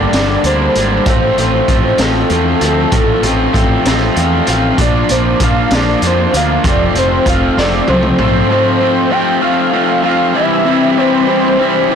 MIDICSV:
0, 0, Header, 1, 5, 480
1, 0, Start_track
1, 0, Key_signature, -1, "major"
1, 0, Tempo, 618557
1, 826, Time_signature, 6, 3, 24, 8
1, 9274, End_track
2, 0, Start_track
2, 0, Title_t, "Analog synth lead"
2, 0, Program_c, 0, 81
2, 0, Note_on_c, 0, 74, 90
2, 105, Note_off_c, 0, 74, 0
2, 115, Note_on_c, 0, 74, 87
2, 343, Note_off_c, 0, 74, 0
2, 358, Note_on_c, 0, 72, 82
2, 819, Note_off_c, 0, 72, 0
2, 852, Note_on_c, 0, 72, 84
2, 1073, Note_off_c, 0, 72, 0
2, 1099, Note_on_c, 0, 72, 86
2, 1318, Note_off_c, 0, 72, 0
2, 1327, Note_on_c, 0, 72, 89
2, 1552, Note_off_c, 0, 72, 0
2, 1566, Note_on_c, 0, 69, 105
2, 2972, Note_off_c, 0, 69, 0
2, 3491, Note_on_c, 0, 77, 91
2, 3717, Note_off_c, 0, 77, 0
2, 3734, Note_on_c, 0, 74, 89
2, 3959, Note_off_c, 0, 74, 0
2, 3968, Note_on_c, 0, 72, 78
2, 4196, Note_off_c, 0, 72, 0
2, 4223, Note_on_c, 0, 77, 95
2, 4443, Note_off_c, 0, 77, 0
2, 4462, Note_on_c, 0, 74, 87
2, 4683, Note_off_c, 0, 74, 0
2, 4710, Note_on_c, 0, 72, 88
2, 4927, Note_off_c, 0, 72, 0
2, 4941, Note_on_c, 0, 77, 94
2, 5162, Note_off_c, 0, 77, 0
2, 5178, Note_on_c, 0, 74, 84
2, 5401, Note_off_c, 0, 74, 0
2, 5420, Note_on_c, 0, 72, 83
2, 5642, Note_off_c, 0, 72, 0
2, 5663, Note_on_c, 0, 77, 88
2, 5883, Note_off_c, 0, 77, 0
2, 5891, Note_on_c, 0, 74, 87
2, 6117, Note_off_c, 0, 74, 0
2, 6125, Note_on_c, 0, 72, 84
2, 6353, Note_off_c, 0, 72, 0
2, 6366, Note_on_c, 0, 72, 94
2, 6589, Note_off_c, 0, 72, 0
2, 6593, Note_on_c, 0, 72, 108
2, 7071, Note_on_c, 0, 79, 116
2, 7083, Note_off_c, 0, 72, 0
2, 7307, Note_off_c, 0, 79, 0
2, 7312, Note_on_c, 0, 77, 109
2, 7760, Note_off_c, 0, 77, 0
2, 7803, Note_on_c, 0, 77, 101
2, 8020, Note_off_c, 0, 77, 0
2, 8040, Note_on_c, 0, 76, 118
2, 8516, Note_on_c, 0, 72, 101
2, 8528, Note_off_c, 0, 76, 0
2, 8751, Note_off_c, 0, 72, 0
2, 8764, Note_on_c, 0, 72, 98
2, 9261, Note_off_c, 0, 72, 0
2, 9274, End_track
3, 0, Start_track
3, 0, Title_t, "Overdriven electric guitar"
3, 0, Program_c, 1, 29
3, 0, Note_on_c, 1, 50, 70
3, 0, Note_on_c, 1, 55, 65
3, 0, Note_on_c, 1, 58, 71
3, 0, Note_on_c, 1, 62, 67
3, 95, Note_off_c, 1, 62, 0
3, 98, Note_off_c, 1, 58, 0
3, 103, Note_off_c, 1, 50, 0
3, 104, Note_off_c, 1, 55, 0
3, 105, Note_on_c, 1, 62, 71
3, 107, Note_on_c, 1, 58, 66
3, 113, Note_on_c, 1, 50, 62
3, 113, Note_on_c, 1, 55, 64
3, 345, Note_off_c, 1, 62, 0
3, 346, Note_off_c, 1, 58, 0
3, 349, Note_off_c, 1, 50, 0
3, 349, Note_off_c, 1, 55, 0
3, 358, Note_on_c, 1, 50, 70
3, 361, Note_on_c, 1, 55, 71
3, 361, Note_on_c, 1, 58, 75
3, 364, Note_on_c, 1, 62, 67
3, 592, Note_off_c, 1, 50, 0
3, 594, Note_off_c, 1, 55, 0
3, 594, Note_off_c, 1, 58, 0
3, 595, Note_off_c, 1, 62, 0
3, 604, Note_on_c, 1, 58, 73
3, 604, Note_on_c, 1, 62, 73
3, 605, Note_on_c, 1, 55, 62
3, 608, Note_on_c, 1, 50, 60
3, 826, Note_off_c, 1, 50, 0
3, 829, Note_on_c, 1, 53, 84
3, 834, Note_off_c, 1, 58, 0
3, 836, Note_off_c, 1, 55, 0
3, 836, Note_off_c, 1, 62, 0
3, 837, Note_on_c, 1, 60, 85
3, 839, Note_on_c, 1, 57, 82
3, 846, Note_on_c, 1, 65, 93
3, 1053, Note_off_c, 1, 60, 0
3, 1055, Note_off_c, 1, 65, 0
3, 1059, Note_off_c, 1, 57, 0
3, 1063, Note_on_c, 1, 60, 76
3, 1064, Note_off_c, 1, 53, 0
3, 1064, Note_on_c, 1, 65, 80
3, 1068, Note_on_c, 1, 57, 68
3, 1074, Note_on_c, 1, 53, 63
3, 1292, Note_off_c, 1, 53, 0
3, 1295, Note_off_c, 1, 57, 0
3, 1295, Note_off_c, 1, 60, 0
3, 1297, Note_off_c, 1, 65, 0
3, 1302, Note_on_c, 1, 53, 64
3, 1305, Note_on_c, 1, 57, 70
3, 1305, Note_on_c, 1, 60, 63
3, 1306, Note_on_c, 1, 65, 79
3, 1535, Note_off_c, 1, 65, 0
3, 1543, Note_off_c, 1, 57, 0
3, 1543, Note_off_c, 1, 60, 0
3, 1544, Note_on_c, 1, 65, 80
3, 1546, Note_off_c, 1, 53, 0
3, 1552, Note_on_c, 1, 57, 62
3, 1552, Note_on_c, 1, 60, 69
3, 1558, Note_on_c, 1, 53, 59
3, 1769, Note_off_c, 1, 53, 0
3, 1775, Note_off_c, 1, 57, 0
3, 1778, Note_on_c, 1, 53, 76
3, 1779, Note_off_c, 1, 60, 0
3, 1783, Note_off_c, 1, 65, 0
3, 1785, Note_on_c, 1, 57, 71
3, 1788, Note_on_c, 1, 60, 74
3, 1792, Note_on_c, 1, 65, 80
3, 2015, Note_off_c, 1, 65, 0
3, 2020, Note_off_c, 1, 60, 0
3, 2024, Note_on_c, 1, 65, 77
3, 2025, Note_off_c, 1, 53, 0
3, 2025, Note_off_c, 1, 57, 0
3, 2029, Note_on_c, 1, 60, 75
3, 2034, Note_on_c, 1, 57, 70
3, 2036, Note_on_c, 1, 53, 67
3, 2258, Note_off_c, 1, 53, 0
3, 2260, Note_off_c, 1, 60, 0
3, 2262, Note_off_c, 1, 57, 0
3, 2265, Note_off_c, 1, 65, 0
3, 2267, Note_on_c, 1, 53, 80
3, 2269, Note_on_c, 1, 60, 85
3, 2272, Note_on_c, 1, 57, 88
3, 2274, Note_on_c, 1, 65, 93
3, 2491, Note_off_c, 1, 65, 0
3, 2498, Note_off_c, 1, 60, 0
3, 2501, Note_off_c, 1, 57, 0
3, 2501, Note_on_c, 1, 65, 75
3, 2504, Note_off_c, 1, 53, 0
3, 2507, Note_on_c, 1, 60, 80
3, 2510, Note_on_c, 1, 57, 73
3, 2513, Note_on_c, 1, 53, 64
3, 2725, Note_off_c, 1, 53, 0
3, 2729, Note_off_c, 1, 60, 0
3, 2733, Note_off_c, 1, 57, 0
3, 2734, Note_on_c, 1, 53, 66
3, 2736, Note_off_c, 1, 65, 0
3, 2739, Note_on_c, 1, 60, 74
3, 2742, Note_on_c, 1, 57, 75
3, 2745, Note_on_c, 1, 65, 78
3, 2979, Note_off_c, 1, 65, 0
3, 2985, Note_off_c, 1, 53, 0
3, 2986, Note_off_c, 1, 57, 0
3, 2987, Note_off_c, 1, 60, 0
3, 2988, Note_on_c, 1, 65, 80
3, 2995, Note_on_c, 1, 53, 56
3, 2995, Note_on_c, 1, 57, 64
3, 2996, Note_on_c, 1, 60, 75
3, 3206, Note_off_c, 1, 53, 0
3, 3214, Note_off_c, 1, 57, 0
3, 3216, Note_off_c, 1, 60, 0
3, 3216, Note_on_c, 1, 53, 72
3, 3217, Note_off_c, 1, 65, 0
3, 3223, Note_on_c, 1, 57, 72
3, 3225, Note_on_c, 1, 60, 75
3, 3226, Note_on_c, 1, 65, 74
3, 3461, Note_off_c, 1, 65, 0
3, 3466, Note_off_c, 1, 53, 0
3, 3467, Note_off_c, 1, 57, 0
3, 3471, Note_off_c, 1, 60, 0
3, 3471, Note_on_c, 1, 65, 86
3, 3476, Note_on_c, 1, 57, 74
3, 3478, Note_on_c, 1, 53, 64
3, 3479, Note_on_c, 1, 60, 75
3, 3700, Note_off_c, 1, 53, 0
3, 3706, Note_off_c, 1, 57, 0
3, 3710, Note_on_c, 1, 53, 89
3, 3710, Note_on_c, 1, 58, 86
3, 3712, Note_off_c, 1, 65, 0
3, 3714, Note_off_c, 1, 60, 0
3, 3717, Note_on_c, 1, 62, 95
3, 3721, Note_on_c, 1, 65, 88
3, 3951, Note_off_c, 1, 65, 0
3, 3952, Note_off_c, 1, 62, 0
3, 3953, Note_off_c, 1, 53, 0
3, 3953, Note_off_c, 1, 58, 0
3, 3960, Note_on_c, 1, 65, 78
3, 3961, Note_on_c, 1, 62, 75
3, 3962, Note_on_c, 1, 58, 76
3, 3964, Note_on_c, 1, 53, 64
3, 4187, Note_off_c, 1, 53, 0
3, 4194, Note_off_c, 1, 62, 0
3, 4195, Note_off_c, 1, 58, 0
3, 4195, Note_off_c, 1, 65, 0
3, 4196, Note_on_c, 1, 53, 74
3, 4203, Note_on_c, 1, 62, 74
3, 4204, Note_on_c, 1, 58, 73
3, 4204, Note_on_c, 1, 65, 75
3, 4423, Note_off_c, 1, 62, 0
3, 4424, Note_off_c, 1, 65, 0
3, 4428, Note_off_c, 1, 58, 0
3, 4433, Note_on_c, 1, 62, 72
3, 4434, Note_off_c, 1, 53, 0
3, 4434, Note_on_c, 1, 65, 74
3, 4437, Note_on_c, 1, 58, 75
3, 4444, Note_on_c, 1, 53, 71
3, 4672, Note_off_c, 1, 53, 0
3, 4672, Note_off_c, 1, 62, 0
3, 4673, Note_off_c, 1, 58, 0
3, 4676, Note_off_c, 1, 65, 0
3, 4682, Note_on_c, 1, 53, 71
3, 4682, Note_on_c, 1, 62, 72
3, 4683, Note_on_c, 1, 58, 76
3, 4686, Note_on_c, 1, 65, 75
3, 4902, Note_off_c, 1, 65, 0
3, 4903, Note_off_c, 1, 62, 0
3, 4910, Note_off_c, 1, 58, 0
3, 4911, Note_on_c, 1, 65, 84
3, 4912, Note_on_c, 1, 62, 69
3, 4914, Note_off_c, 1, 53, 0
3, 4919, Note_on_c, 1, 58, 73
3, 4923, Note_on_c, 1, 53, 70
3, 5152, Note_off_c, 1, 53, 0
3, 5154, Note_off_c, 1, 65, 0
3, 5155, Note_off_c, 1, 62, 0
3, 5156, Note_off_c, 1, 58, 0
3, 5159, Note_on_c, 1, 57, 95
3, 5162, Note_on_c, 1, 53, 79
3, 5162, Note_on_c, 1, 60, 85
3, 5168, Note_on_c, 1, 65, 94
3, 5381, Note_off_c, 1, 65, 0
3, 5389, Note_off_c, 1, 60, 0
3, 5390, Note_on_c, 1, 65, 78
3, 5393, Note_off_c, 1, 53, 0
3, 5393, Note_off_c, 1, 57, 0
3, 5399, Note_on_c, 1, 60, 82
3, 5402, Note_on_c, 1, 53, 71
3, 5403, Note_on_c, 1, 57, 70
3, 5615, Note_off_c, 1, 53, 0
3, 5624, Note_off_c, 1, 57, 0
3, 5624, Note_on_c, 1, 53, 73
3, 5626, Note_off_c, 1, 65, 0
3, 5630, Note_off_c, 1, 60, 0
3, 5634, Note_on_c, 1, 57, 71
3, 5635, Note_on_c, 1, 65, 87
3, 5639, Note_on_c, 1, 60, 74
3, 5870, Note_off_c, 1, 53, 0
3, 5873, Note_off_c, 1, 65, 0
3, 5874, Note_off_c, 1, 60, 0
3, 5875, Note_off_c, 1, 57, 0
3, 5882, Note_on_c, 1, 65, 72
3, 5883, Note_on_c, 1, 60, 77
3, 5887, Note_on_c, 1, 57, 70
3, 5891, Note_on_c, 1, 53, 66
3, 6100, Note_off_c, 1, 57, 0
3, 6103, Note_off_c, 1, 53, 0
3, 6108, Note_off_c, 1, 60, 0
3, 6109, Note_on_c, 1, 57, 74
3, 6110, Note_off_c, 1, 65, 0
3, 6113, Note_on_c, 1, 53, 76
3, 6117, Note_on_c, 1, 60, 74
3, 6119, Note_on_c, 1, 65, 83
3, 6351, Note_off_c, 1, 65, 0
3, 6352, Note_off_c, 1, 57, 0
3, 6353, Note_off_c, 1, 60, 0
3, 6354, Note_off_c, 1, 53, 0
3, 6360, Note_on_c, 1, 57, 80
3, 6360, Note_on_c, 1, 65, 84
3, 6362, Note_on_c, 1, 60, 78
3, 6365, Note_on_c, 1, 53, 65
3, 6584, Note_off_c, 1, 53, 0
3, 6590, Note_off_c, 1, 57, 0
3, 6593, Note_on_c, 1, 53, 96
3, 6594, Note_off_c, 1, 60, 0
3, 6595, Note_off_c, 1, 65, 0
3, 6599, Note_on_c, 1, 57, 113
3, 6603, Note_on_c, 1, 60, 114
3, 6604, Note_on_c, 1, 65, 110
3, 6821, Note_off_c, 1, 53, 0
3, 6827, Note_off_c, 1, 57, 0
3, 6828, Note_off_c, 1, 65, 0
3, 6831, Note_on_c, 1, 53, 88
3, 6833, Note_off_c, 1, 60, 0
3, 6836, Note_on_c, 1, 57, 96
3, 6836, Note_on_c, 1, 60, 97
3, 6837, Note_on_c, 1, 65, 104
3, 7054, Note_off_c, 1, 53, 0
3, 7059, Note_off_c, 1, 57, 0
3, 7063, Note_on_c, 1, 53, 81
3, 7068, Note_off_c, 1, 65, 0
3, 7068, Note_on_c, 1, 57, 82
3, 7070, Note_off_c, 1, 60, 0
3, 7073, Note_on_c, 1, 60, 89
3, 7077, Note_on_c, 1, 65, 88
3, 7290, Note_off_c, 1, 53, 0
3, 7292, Note_off_c, 1, 57, 0
3, 7298, Note_off_c, 1, 65, 0
3, 7299, Note_off_c, 1, 60, 0
3, 7299, Note_on_c, 1, 53, 87
3, 7301, Note_on_c, 1, 57, 85
3, 7302, Note_on_c, 1, 60, 82
3, 7307, Note_on_c, 1, 65, 93
3, 7533, Note_off_c, 1, 53, 0
3, 7534, Note_off_c, 1, 57, 0
3, 7537, Note_off_c, 1, 65, 0
3, 7542, Note_on_c, 1, 53, 80
3, 7544, Note_on_c, 1, 57, 97
3, 7545, Note_off_c, 1, 60, 0
3, 7547, Note_on_c, 1, 65, 97
3, 7548, Note_on_c, 1, 60, 95
3, 7769, Note_off_c, 1, 53, 0
3, 7778, Note_on_c, 1, 53, 88
3, 7779, Note_off_c, 1, 57, 0
3, 7784, Note_off_c, 1, 65, 0
3, 7788, Note_off_c, 1, 60, 0
3, 7788, Note_on_c, 1, 57, 94
3, 7791, Note_on_c, 1, 60, 99
3, 7794, Note_on_c, 1, 65, 94
3, 8009, Note_off_c, 1, 53, 0
3, 8015, Note_off_c, 1, 57, 0
3, 8017, Note_off_c, 1, 65, 0
3, 8028, Note_on_c, 1, 52, 109
3, 8028, Note_on_c, 1, 55, 116
3, 8029, Note_on_c, 1, 48, 94
3, 8030, Note_off_c, 1, 60, 0
3, 8033, Note_on_c, 1, 60, 106
3, 8036, Note_on_c, 1, 64, 109
3, 8255, Note_off_c, 1, 48, 0
3, 8259, Note_off_c, 1, 52, 0
3, 8260, Note_off_c, 1, 55, 0
3, 8264, Note_off_c, 1, 60, 0
3, 8264, Note_off_c, 1, 64, 0
3, 8264, Note_on_c, 1, 48, 92
3, 8268, Note_on_c, 1, 52, 89
3, 8268, Note_on_c, 1, 60, 105
3, 8269, Note_on_c, 1, 55, 95
3, 8274, Note_on_c, 1, 64, 106
3, 8506, Note_off_c, 1, 48, 0
3, 8509, Note_off_c, 1, 52, 0
3, 8510, Note_off_c, 1, 55, 0
3, 8515, Note_on_c, 1, 48, 85
3, 8517, Note_off_c, 1, 64, 0
3, 8518, Note_on_c, 1, 52, 85
3, 8519, Note_on_c, 1, 55, 87
3, 8525, Note_off_c, 1, 60, 0
3, 8526, Note_on_c, 1, 64, 91
3, 8528, Note_on_c, 1, 60, 93
3, 8737, Note_off_c, 1, 48, 0
3, 8742, Note_off_c, 1, 55, 0
3, 8743, Note_off_c, 1, 52, 0
3, 8745, Note_off_c, 1, 64, 0
3, 8747, Note_on_c, 1, 48, 88
3, 8751, Note_on_c, 1, 55, 87
3, 8753, Note_off_c, 1, 60, 0
3, 8753, Note_on_c, 1, 52, 94
3, 8754, Note_on_c, 1, 64, 91
3, 8756, Note_on_c, 1, 60, 90
3, 8978, Note_off_c, 1, 48, 0
3, 8980, Note_off_c, 1, 52, 0
3, 8982, Note_off_c, 1, 55, 0
3, 8987, Note_on_c, 1, 48, 91
3, 8989, Note_on_c, 1, 52, 93
3, 8991, Note_on_c, 1, 55, 92
3, 8992, Note_off_c, 1, 60, 0
3, 8992, Note_off_c, 1, 64, 0
3, 8995, Note_on_c, 1, 60, 95
3, 9001, Note_on_c, 1, 64, 98
3, 9219, Note_off_c, 1, 48, 0
3, 9225, Note_off_c, 1, 52, 0
3, 9228, Note_on_c, 1, 48, 96
3, 9231, Note_off_c, 1, 55, 0
3, 9234, Note_off_c, 1, 64, 0
3, 9235, Note_on_c, 1, 52, 88
3, 9236, Note_off_c, 1, 60, 0
3, 9239, Note_on_c, 1, 60, 96
3, 9240, Note_on_c, 1, 55, 94
3, 9244, Note_on_c, 1, 64, 94
3, 9274, Note_off_c, 1, 48, 0
3, 9274, Note_off_c, 1, 52, 0
3, 9274, Note_off_c, 1, 55, 0
3, 9274, Note_off_c, 1, 60, 0
3, 9274, Note_off_c, 1, 64, 0
3, 9274, End_track
4, 0, Start_track
4, 0, Title_t, "Picked electric bass"
4, 0, Program_c, 2, 34
4, 99, Note_on_c, 2, 31, 85
4, 281, Note_off_c, 2, 31, 0
4, 341, Note_on_c, 2, 38, 84
4, 523, Note_off_c, 2, 38, 0
4, 588, Note_on_c, 2, 32, 73
4, 768, Note_off_c, 2, 32, 0
4, 824, Note_on_c, 2, 33, 85
4, 1006, Note_off_c, 2, 33, 0
4, 1071, Note_on_c, 2, 33, 77
4, 1250, Note_off_c, 2, 33, 0
4, 1306, Note_on_c, 2, 33, 82
4, 1488, Note_off_c, 2, 33, 0
4, 1544, Note_on_c, 2, 33, 84
4, 1727, Note_off_c, 2, 33, 0
4, 1788, Note_on_c, 2, 40, 86
4, 1970, Note_off_c, 2, 40, 0
4, 2028, Note_on_c, 2, 38, 74
4, 2210, Note_off_c, 2, 38, 0
4, 2265, Note_on_c, 2, 33, 89
4, 2449, Note_off_c, 2, 33, 0
4, 2503, Note_on_c, 2, 33, 85
4, 2687, Note_off_c, 2, 33, 0
4, 2748, Note_on_c, 2, 33, 85
4, 2931, Note_off_c, 2, 33, 0
4, 2989, Note_on_c, 2, 33, 88
4, 3171, Note_off_c, 2, 33, 0
4, 3233, Note_on_c, 2, 40, 93
4, 3414, Note_off_c, 2, 40, 0
4, 3476, Note_on_c, 2, 33, 80
4, 3657, Note_off_c, 2, 33, 0
4, 3710, Note_on_c, 2, 34, 90
4, 3893, Note_off_c, 2, 34, 0
4, 3963, Note_on_c, 2, 34, 86
4, 4141, Note_off_c, 2, 34, 0
4, 4193, Note_on_c, 2, 34, 82
4, 4374, Note_off_c, 2, 34, 0
4, 4435, Note_on_c, 2, 34, 83
4, 4616, Note_off_c, 2, 34, 0
4, 4674, Note_on_c, 2, 41, 86
4, 4855, Note_off_c, 2, 41, 0
4, 4918, Note_on_c, 2, 38, 78
4, 5097, Note_off_c, 2, 38, 0
4, 5156, Note_on_c, 2, 29, 96
4, 5336, Note_off_c, 2, 29, 0
4, 5389, Note_on_c, 2, 29, 83
4, 5572, Note_off_c, 2, 29, 0
4, 5634, Note_on_c, 2, 29, 86
4, 5815, Note_off_c, 2, 29, 0
4, 5874, Note_on_c, 2, 29, 89
4, 6055, Note_off_c, 2, 29, 0
4, 6121, Note_on_c, 2, 36, 89
4, 6299, Note_off_c, 2, 36, 0
4, 6353, Note_on_c, 2, 34, 80
4, 6534, Note_off_c, 2, 34, 0
4, 9274, End_track
5, 0, Start_track
5, 0, Title_t, "Drums"
5, 99, Note_on_c, 9, 42, 80
5, 109, Note_on_c, 9, 38, 98
5, 177, Note_off_c, 9, 42, 0
5, 186, Note_off_c, 9, 38, 0
5, 340, Note_on_c, 9, 42, 63
5, 418, Note_off_c, 9, 42, 0
5, 584, Note_on_c, 9, 42, 63
5, 662, Note_off_c, 9, 42, 0
5, 821, Note_on_c, 9, 42, 83
5, 824, Note_on_c, 9, 36, 98
5, 898, Note_off_c, 9, 42, 0
5, 901, Note_off_c, 9, 36, 0
5, 1069, Note_on_c, 9, 42, 61
5, 1146, Note_off_c, 9, 42, 0
5, 1305, Note_on_c, 9, 36, 76
5, 1305, Note_on_c, 9, 42, 60
5, 1382, Note_off_c, 9, 42, 0
5, 1383, Note_off_c, 9, 36, 0
5, 1537, Note_on_c, 9, 42, 87
5, 1546, Note_on_c, 9, 38, 98
5, 1614, Note_off_c, 9, 42, 0
5, 1623, Note_off_c, 9, 38, 0
5, 1782, Note_on_c, 9, 42, 64
5, 1859, Note_off_c, 9, 42, 0
5, 2025, Note_on_c, 9, 42, 70
5, 2102, Note_off_c, 9, 42, 0
5, 2263, Note_on_c, 9, 42, 90
5, 2268, Note_on_c, 9, 36, 105
5, 2341, Note_off_c, 9, 42, 0
5, 2346, Note_off_c, 9, 36, 0
5, 2506, Note_on_c, 9, 42, 64
5, 2584, Note_off_c, 9, 42, 0
5, 2749, Note_on_c, 9, 36, 74
5, 2754, Note_on_c, 9, 42, 67
5, 2827, Note_off_c, 9, 36, 0
5, 2831, Note_off_c, 9, 42, 0
5, 2990, Note_on_c, 9, 42, 85
5, 3000, Note_on_c, 9, 38, 102
5, 3068, Note_off_c, 9, 42, 0
5, 3077, Note_off_c, 9, 38, 0
5, 3231, Note_on_c, 9, 42, 68
5, 3309, Note_off_c, 9, 42, 0
5, 3466, Note_on_c, 9, 42, 72
5, 3543, Note_off_c, 9, 42, 0
5, 3709, Note_on_c, 9, 42, 87
5, 3710, Note_on_c, 9, 36, 98
5, 3786, Note_off_c, 9, 42, 0
5, 3788, Note_off_c, 9, 36, 0
5, 3949, Note_on_c, 9, 42, 66
5, 4027, Note_off_c, 9, 42, 0
5, 4189, Note_on_c, 9, 42, 66
5, 4191, Note_on_c, 9, 36, 73
5, 4267, Note_off_c, 9, 42, 0
5, 4269, Note_off_c, 9, 36, 0
5, 4427, Note_on_c, 9, 42, 77
5, 4436, Note_on_c, 9, 38, 101
5, 4505, Note_off_c, 9, 42, 0
5, 4514, Note_off_c, 9, 38, 0
5, 4671, Note_on_c, 9, 42, 67
5, 4748, Note_off_c, 9, 42, 0
5, 4918, Note_on_c, 9, 42, 69
5, 4996, Note_off_c, 9, 42, 0
5, 5155, Note_on_c, 9, 36, 105
5, 5157, Note_on_c, 9, 42, 83
5, 5232, Note_off_c, 9, 36, 0
5, 5235, Note_off_c, 9, 42, 0
5, 5395, Note_on_c, 9, 42, 65
5, 5473, Note_off_c, 9, 42, 0
5, 5634, Note_on_c, 9, 36, 72
5, 5636, Note_on_c, 9, 42, 67
5, 5712, Note_off_c, 9, 36, 0
5, 5713, Note_off_c, 9, 42, 0
5, 5882, Note_on_c, 9, 38, 55
5, 5960, Note_off_c, 9, 38, 0
5, 6112, Note_on_c, 9, 48, 78
5, 6190, Note_off_c, 9, 48, 0
5, 6228, Note_on_c, 9, 47, 72
5, 6306, Note_off_c, 9, 47, 0
5, 6352, Note_on_c, 9, 45, 89
5, 6430, Note_off_c, 9, 45, 0
5, 9274, End_track
0, 0, End_of_file